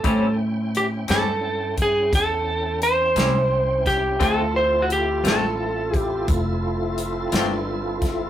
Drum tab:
HH |x-xx-xx-xx-x|x-xx-xx-xx-x|
SD |---o-----o-o|---o-----o-o|
BD |o----oo----o|o----oo----o|